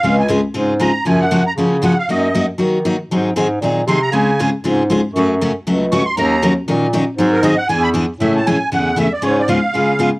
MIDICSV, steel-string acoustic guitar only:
0, 0, Header, 1, 2, 480
1, 0, Start_track
1, 0, Key_signature, -5, "major"
1, 0, Tempo, 254994
1, 72, Time_signature, 4, 2, 24, 8
1, 19191, End_track
2, 0, Start_track
2, 0, Title_t, "Steel-string acoustic guitar"
2, 0, Program_c, 0, 25
2, 60, Note_on_c, 0, 49, 65
2, 78, Note_on_c, 0, 56, 63
2, 78, Note_on_c, 0, 60, 66
2, 86, Note_on_c, 0, 65, 67
2, 99, Note_on_c, 0, 68, 68
2, 410, Note_off_c, 0, 49, 0
2, 419, Note_off_c, 0, 56, 0
2, 420, Note_off_c, 0, 60, 0
2, 423, Note_off_c, 0, 65, 0
2, 430, Note_off_c, 0, 68, 0
2, 533, Note_on_c, 0, 49, 88
2, 549, Note_on_c, 0, 56, 85
2, 556, Note_on_c, 0, 60, 79
2, 567, Note_on_c, 0, 68, 85
2, 568, Note_on_c, 0, 65, 94
2, 738, Note_off_c, 0, 49, 0
2, 745, Note_off_c, 0, 56, 0
2, 749, Note_off_c, 0, 60, 0
2, 754, Note_off_c, 0, 68, 0
2, 755, Note_off_c, 0, 65, 0
2, 1017, Note_on_c, 0, 56, 63
2, 1019, Note_on_c, 0, 49, 56
2, 1023, Note_on_c, 0, 65, 72
2, 1033, Note_on_c, 0, 60, 66
2, 1035, Note_on_c, 0, 68, 68
2, 1369, Note_off_c, 0, 56, 0
2, 1370, Note_off_c, 0, 49, 0
2, 1372, Note_off_c, 0, 65, 0
2, 1377, Note_off_c, 0, 60, 0
2, 1378, Note_off_c, 0, 68, 0
2, 1499, Note_on_c, 0, 49, 78
2, 1510, Note_on_c, 0, 56, 78
2, 1512, Note_on_c, 0, 60, 74
2, 1523, Note_on_c, 0, 65, 87
2, 1531, Note_on_c, 0, 68, 77
2, 1701, Note_off_c, 0, 49, 0
2, 1707, Note_off_c, 0, 56, 0
2, 1707, Note_off_c, 0, 60, 0
2, 1713, Note_off_c, 0, 65, 0
2, 1717, Note_off_c, 0, 68, 0
2, 1981, Note_on_c, 0, 49, 55
2, 1991, Note_on_c, 0, 53, 69
2, 1998, Note_on_c, 0, 58, 70
2, 2000, Note_on_c, 0, 61, 63
2, 2006, Note_on_c, 0, 66, 63
2, 2332, Note_off_c, 0, 49, 0
2, 2337, Note_off_c, 0, 53, 0
2, 2341, Note_off_c, 0, 58, 0
2, 2342, Note_off_c, 0, 61, 0
2, 2345, Note_off_c, 0, 66, 0
2, 2466, Note_on_c, 0, 49, 82
2, 2471, Note_on_c, 0, 53, 86
2, 2475, Note_on_c, 0, 61, 92
2, 2483, Note_on_c, 0, 58, 95
2, 2491, Note_on_c, 0, 66, 87
2, 2665, Note_off_c, 0, 49, 0
2, 2668, Note_off_c, 0, 53, 0
2, 2669, Note_off_c, 0, 61, 0
2, 2674, Note_off_c, 0, 58, 0
2, 2677, Note_off_c, 0, 66, 0
2, 2967, Note_on_c, 0, 53, 58
2, 2969, Note_on_c, 0, 49, 55
2, 2981, Note_on_c, 0, 58, 67
2, 2986, Note_on_c, 0, 61, 68
2, 2997, Note_on_c, 0, 66, 69
2, 3305, Note_off_c, 0, 53, 0
2, 3307, Note_off_c, 0, 49, 0
2, 3313, Note_off_c, 0, 58, 0
2, 3315, Note_off_c, 0, 61, 0
2, 3321, Note_off_c, 0, 66, 0
2, 3421, Note_on_c, 0, 49, 69
2, 3434, Note_on_c, 0, 53, 77
2, 3434, Note_on_c, 0, 58, 82
2, 3449, Note_on_c, 0, 61, 81
2, 3453, Note_on_c, 0, 66, 85
2, 3623, Note_off_c, 0, 49, 0
2, 3630, Note_off_c, 0, 53, 0
2, 3630, Note_off_c, 0, 58, 0
2, 3637, Note_off_c, 0, 61, 0
2, 3639, Note_off_c, 0, 66, 0
2, 3930, Note_on_c, 0, 54, 64
2, 3942, Note_on_c, 0, 63, 70
2, 3945, Note_on_c, 0, 58, 60
2, 3954, Note_on_c, 0, 66, 74
2, 4267, Note_off_c, 0, 54, 0
2, 4273, Note_off_c, 0, 63, 0
2, 4275, Note_off_c, 0, 58, 0
2, 4279, Note_off_c, 0, 66, 0
2, 4412, Note_on_c, 0, 54, 72
2, 4426, Note_on_c, 0, 58, 88
2, 4426, Note_on_c, 0, 66, 91
2, 4429, Note_on_c, 0, 63, 97
2, 4599, Note_off_c, 0, 54, 0
2, 4606, Note_off_c, 0, 58, 0
2, 4606, Note_off_c, 0, 66, 0
2, 4607, Note_off_c, 0, 63, 0
2, 4856, Note_on_c, 0, 54, 59
2, 4869, Note_on_c, 0, 58, 59
2, 4877, Note_on_c, 0, 63, 63
2, 4883, Note_on_c, 0, 66, 69
2, 5211, Note_off_c, 0, 54, 0
2, 5217, Note_off_c, 0, 58, 0
2, 5222, Note_off_c, 0, 63, 0
2, 5224, Note_off_c, 0, 66, 0
2, 5364, Note_on_c, 0, 54, 80
2, 5365, Note_on_c, 0, 58, 76
2, 5370, Note_on_c, 0, 63, 86
2, 5386, Note_on_c, 0, 66, 83
2, 5556, Note_off_c, 0, 54, 0
2, 5556, Note_off_c, 0, 58, 0
2, 5559, Note_off_c, 0, 63, 0
2, 5566, Note_off_c, 0, 66, 0
2, 5857, Note_on_c, 0, 51, 53
2, 5860, Note_on_c, 0, 54, 65
2, 5871, Note_on_c, 0, 60, 72
2, 5873, Note_on_c, 0, 68, 69
2, 5876, Note_on_c, 0, 63, 68
2, 6192, Note_off_c, 0, 51, 0
2, 6193, Note_off_c, 0, 54, 0
2, 6199, Note_off_c, 0, 60, 0
2, 6200, Note_off_c, 0, 68, 0
2, 6201, Note_off_c, 0, 63, 0
2, 6324, Note_on_c, 0, 51, 81
2, 6329, Note_on_c, 0, 54, 85
2, 6334, Note_on_c, 0, 60, 90
2, 6345, Note_on_c, 0, 68, 95
2, 6359, Note_on_c, 0, 63, 86
2, 6516, Note_off_c, 0, 51, 0
2, 6518, Note_off_c, 0, 54, 0
2, 6521, Note_off_c, 0, 60, 0
2, 6526, Note_off_c, 0, 68, 0
2, 6533, Note_off_c, 0, 63, 0
2, 6815, Note_on_c, 0, 51, 64
2, 6824, Note_on_c, 0, 54, 61
2, 6841, Note_on_c, 0, 63, 73
2, 6845, Note_on_c, 0, 60, 67
2, 6854, Note_on_c, 0, 68, 73
2, 7151, Note_off_c, 0, 51, 0
2, 7155, Note_off_c, 0, 54, 0
2, 7164, Note_off_c, 0, 63, 0
2, 7166, Note_off_c, 0, 60, 0
2, 7170, Note_off_c, 0, 68, 0
2, 7294, Note_on_c, 0, 51, 71
2, 7309, Note_on_c, 0, 60, 79
2, 7310, Note_on_c, 0, 54, 64
2, 7320, Note_on_c, 0, 68, 84
2, 7321, Note_on_c, 0, 63, 80
2, 7481, Note_off_c, 0, 51, 0
2, 7488, Note_off_c, 0, 60, 0
2, 7489, Note_off_c, 0, 54, 0
2, 7493, Note_off_c, 0, 68, 0
2, 7494, Note_off_c, 0, 63, 0
2, 7758, Note_on_c, 0, 49, 65
2, 7772, Note_on_c, 0, 65, 60
2, 7775, Note_on_c, 0, 56, 67
2, 7778, Note_on_c, 0, 60, 67
2, 7784, Note_on_c, 0, 68, 65
2, 8102, Note_off_c, 0, 49, 0
2, 8109, Note_off_c, 0, 65, 0
2, 8110, Note_off_c, 0, 56, 0
2, 8112, Note_off_c, 0, 60, 0
2, 8115, Note_off_c, 0, 68, 0
2, 8271, Note_on_c, 0, 49, 71
2, 8282, Note_on_c, 0, 60, 82
2, 8285, Note_on_c, 0, 56, 91
2, 8288, Note_on_c, 0, 65, 94
2, 8298, Note_on_c, 0, 68, 94
2, 8449, Note_off_c, 0, 49, 0
2, 8455, Note_off_c, 0, 60, 0
2, 8456, Note_off_c, 0, 56, 0
2, 8458, Note_off_c, 0, 65, 0
2, 8463, Note_off_c, 0, 68, 0
2, 8735, Note_on_c, 0, 49, 63
2, 8745, Note_on_c, 0, 56, 61
2, 8754, Note_on_c, 0, 60, 64
2, 8756, Note_on_c, 0, 65, 77
2, 8764, Note_on_c, 0, 68, 62
2, 9070, Note_off_c, 0, 49, 0
2, 9075, Note_off_c, 0, 56, 0
2, 9080, Note_off_c, 0, 60, 0
2, 9081, Note_off_c, 0, 65, 0
2, 9085, Note_off_c, 0, 68, 0
2, 9222, Note_on_c, 0, 56, 78
2, 9224, Note_on_c, 0, 60, 68
2, 9230, Note_on_c, 0, 49, 73
2, 9243, Note_on_c, 0, 65, 92
2, 9255, Note_on_c, 0, 68, 90
2, 9404, Note_off_c, 0, 56, 0
2, 9405, Note_off_c, 0, 60, 0
2, 9408, Note_off_c, 0, 49, 0
2, 9415, Note_off_c, 0, 65, 0
2, 9421, Note_off_c, 0, 68, 0
2, 9711, Note_on_c, 0, 54, 64
2, 9717, Note_on_c, 0, 49, 67
2, 9729, Note_on_c, 0, 61, 66
2, 9733, Note_on_c, 0, 57, 61
2, 9748, Note_on_c, 0, 66, 76
2, 10038, Note_off_c, 0, 54, 0
2, 10041, Note_off_c, 0, 49, 0
2, 10047, Note_off_c, 0, 61, 0
2, 10049, Note_off_c, 0, 57, 0
2, 10057, Note_off_c, 0, 66, 0
2, 10194, Note_on_c, 0, 54, 90
2, 10198, Note_on_c, 0, 49, 82
2, 10203, Note_on_c, 0, 57, 78
2, 10206, Note_on_c, 0, 61, 92
2, 10222, Note_on_c, 0, 66, 82
2, 10370, Note_off_c, 0, 54, 0
2, 10372, Note_off_c, 0, 49, 0
2, 10374, Note_off_c, 0, 57, 0
2, 10376, Note_off_c, 0, 61, 0
2, 10384, Note_off_c, 0, 66, 0
2, 10669, Note_on_c, 0, 49, 67
2, 10674, Note_on_c, 0, 54, 60
2, 10677, Note_on_c, 0, 57, 69
2, 10683, Note_on_c, 0, 61, 72
2, 10686, Note_on_c, 0, 66, 79
2, 10996, Note_off_c, 0, 49, 0
2, 10999, Note_off_c, 0, 54, 0
2, 11001, Note_off_c, 0, 57, 0
2, 11003, Note_off_c, 0, 61, 0
2, 11005, Note_off_c, 0, 66, 0
2, 11141, Note_on_c, 0, 49, 87
2, 11148, Note_on_c, 0, 61, 81
2, 11149, Note_on_c, 0, 54, 84
2, 11159, Note_on_c, 0, 57, 81
2, 11159, Note_on_c, 0, 66, 80
2, 11323, Note_off_c, 0, 49, 0
2, 11326, Note_off_c, 0, 61, 0
2, 11327, Note_off_c, 0, 54, 0
2, 11332, Note_off_c, 0, 57, 0
2, 11332, Note_off_c, 0, 66, 0
2, 11618, Note_on_c, 0, 51, 66
2, 11621, Note_on_c, 0, 61, 77
2, 11630, Note_on_c, 0, 54, 58
2, 11638, Note_on_c, 0, 63, 71
2, 11641, Note_on_c, 0, 70, 70
2, 11950, Note_off_c, 0, 51, 0
2, 11952, Note_off_c, 0, 61, 0
2, 11956, Note_off_c, 0, 54, 0
2, 11961, Note_off_c, 0, 63, 0
2, 11962, Note_off_c, 0, 70, 0
2, 12093, Note_on_c, 0, 51, 81
2, 12101, Note_on_c, 0, 54, 88
2, 12107, Note_on_c, 0, 63, 91
2, 12108, Note_on_c, 0, 61, 81
2, 12112, Note_on_c, 0, 70, 83
2, 12278, Note_off_c, 0, 51, 0
2, 12282, Note_off_c, 0, 54, 0
2, 12285, Note_off_c, 0, 63, 0
2, 12286, Note_off_c, 0, 61, 0
2, 12288, Note_off_c, 0, 70, 0
2, 12571, Note_on_c, 0, 54, 67
2, 12576, Note_on_c, 0, 51, 66
2, 12580, Note_on_c, 0, 61, 71
2, 12590, Note_on_c, 0, 63, 84
2, 12600, Note_on_c, 0, 70, 71
2, 12906, Note_off_c, 0, 54, 0
2, 12908, Note_off_c, 0, 51, 0
2, 12910, Note_off_c, 0, 61, 0
2, 12916, Note_off_c, 0, 63, 0
2, 12921, Note_off_c, 0, 70, 0
2, 13045, Note_on_c, 0, 54, 74
2, 13055, Note_on_c, 0, 51, 88
2, 13055, Note_on_c, 0, 61, 88
2, 13062, Note_on_c, 0, 63, 82
2, 13065, Note_on_c, 0, 70, 95
2, 13233, Note_off_c, 0, 54, 0
2, 13238, Note_off_c, 0, 61, 0
2, 13239, Note_off_c, 0, 51, 0
2, 13242, Note_off_c, 0, 63, 0
2, 13243, Note_off_c, 0, 70, 0
2, 13522, Note_on_c, 0, 54, 78
2, 13528, Note_on_c, 0, 51, 66
2, 13543, Note_on_c, 0, 60, 60
2, 13546, Note_on_c, 0, 63, 65
2, 13551, Note_on_c, 0, 68, 72
2, 13861, Note_off_c, 0, 54, 0
2, 13864, Note_off_c, 0, 51, 0
2, 13871, Note_off_c, 0, 60, 0
2, 13873, Note_off_c, 0, 63, 0
2, 13875, Note_off_c, 0, 68, 0
2, 13978, Note_on_c, 0, 51, 91
2, 13980, Note_on_c, 0, 54, 89
2, 13993, Note_on_c, 0, 60, 91
2, 13996, Note_on_c, 0, 63, 100
2, 14001, Note_on_c, 0, 68, 96
2, 14179, Note_off_c, 0, 51, 0
2, 14180, Note_off_c, 0, 54, 0
2, 14187, Note_off_c, 0, 60, 0
2, 14188, Note_off_c, 0, 63, 0
2, 14191, Note_off_c, 0, 68, 0
2, 14473, Note_on_c, 0, 52, 67
2, 14473, Note_on_c, 0, 59, 64
2, 14486, Note_on_c, 0, 68, 80
2, 14491, Note_on_c, 0, 62, 69
2, 14816, Note_off_c, 0, 52, 0
2, 14816, Note_off_c, 0, 59, 0
2, 14822, Note_off_c, 0, 68, 0
2, 14824, Note_off_c, 0, 62, 0
2, 14936, Note_on_c, 0, 52, 69
2, 14952, Note_on_c, 0, 59, 88
2, 14953, Note_on_c, 0, 62, 75
2, 14958, Note_on_c, 0, 68, 89
2, 15138, Note_off_c, 0, 52, 0
2, 15146, Note_off_c, 0, 59, 0
2, 15146, Note_off_c, 0, 62, 0
2, 15149, Note_off_c, 0, 68, 0
2, 15437, Note_on_c, 0, 49, 59
2, 15440, Note_on_c, 0, 52, 62
2, 15458, Note_on_c, 0, 57, 60
2, 15459, Note_on_c, 0, 61, 63
2, 15464, Note_on_c, 0, 68, 66
2, 15777, Note_off_c, 0, 49, 0
2, 15779, Note_off_c, 0, 52, 0
2, 15788, Note_off_c, 0, 57, 0
2, 15788, Note_off_c, 0, 61, 0
2, 15791, Note_off_c, 0, 68, 0
2, 15938, Note_on_c, 0, 49, 81
2, 15940, Note_on_c, 0, 52, 77
2, 15945, Note_on_c, 0, 57, 88
2, 15946, Note_on_c, 0, 61, 96
2, 15955, Note_on_c, 0, 68, 83
2, 16118, Note_off_c, 0, 49, 0
2, 16119, Note_off_c, 0, 52, 0
2, 16122, Note_off_c, 0, 57, 0
2, 16122, Note_off_c, 0, 61, 0
2, 16127, Note_off_c, 0, 68, 0
2, 16406, Note_on_c, 0, 49, 57
2, 16409, Note_on_c, 0, 52, 64
2, 16419, Note_on_c, 0, 57, 60
2, 16424, Note_on_c, 0, 61, 60
2, 16429, Note_on_c, 0, 68, 61
2, 16742, Note_off_c, 0, 49, 0
2, 16743, Note_off_c, 0, 52, 0
2, 16748, Note_off_c, 0, 57, 0
2, 16751, Note_off_c, 0, 61, 0
2, 16753, Note_off_c, 0, 68, 0
2, 16869, Note_on_c, 0, 49, 70
2, 16869, Note_on_c, 0, 52, 71
2, 16891, Note_on_c, 0, 61, 84
2, 16895, Note_on_c, 0, 57, 75
2, 16900, Note_on_c, 0, 68, 81
2, 17064, Note_off_c, 0, 49, 0
2, 17064, Note_off_c, 0, 52, 0
2, 17075, Note_off_c, 0, 61, 0
2, 17077, Note_off_c, 0, 57, 0
2, 17079, Note_off_c, 0, 68, 0
2, 17353, Note_on_c, 0, 49, 65
2, 17356, Note_on_c, 0, 56, 70
2, 17357, Note_on_c, 0, 59, 67
2, 17375, Note_on_c, 0, 65, 70
2, 17379, Note_on_c, 0, 68, 63
2, 17695, Note_off_c, 0, 49, 0
2, 17697, Note_off_c, 0, 56, 0
2, 17697, Note_off_c, 0, 59, 0
2, 17706, Note_off_c, 0, 65, 0
2, 17708, Note_off_c, 0, 68, 0
2, 17842, Note_on_c, 0, 49, 81
2, 17855, Note_on_c, 0, 59, 74
2, 17857, Note_on_c, 0, 68, 81
2, 17859, Note_on_c, 0, 56, 86
2, 17859, Note_on_c, 0, 65, 90
2, 18030, Note_off_c, 0, 49, 0
2, 18037, Note_off_c, 0, 59, 0
2, 18038, Note_off_c, 0, 68, 0
2, 18039, Note_off_c, 0, 56, 0
2, 18039, Note_off_c, 0, 65, 0
2, 18327, Note_on_c, 0, 49, 55
2, 18337, Note_on_c, 0, 56, 58
2, 18353, Note_on_c, 0, 68, 66
2, 18354, Note_on_c, 0, 59, 63
2, 18355, Note_on_c, 0, 65, 61
2, 18663, Note_off_c, 0, 49, 0
2, 18668, Note_off_c, 0, 56, 0
2, 18676, Note_off_c, 0, 59, 0
2, 18676, Note_off_c, 0, 68, 0
2, 18677, Note_off_c, 0, 65, 0
2, 18799, Note_on_c, 0, 56, 66
2, 18809, Note_on_c, 0, 49, 65
2, 18814, Note_on_c, 0, 59, 76
2, 18817, Note_on_c, 0, 65, 85
2, 18829, Note_on_c, 0, 68, 79
2, 18989, Note_off_c, 0, 56, 0
2, 18994, Note_off_c, 0, 49, 0
2, 18997, Note_off_c, 0, 59, 0
2, 18998, Note_off_c, 0, 65, 0
2, 19004, Note_off_c, 0, 68, 0
2, 19191, End_track
0, 0, End_of_file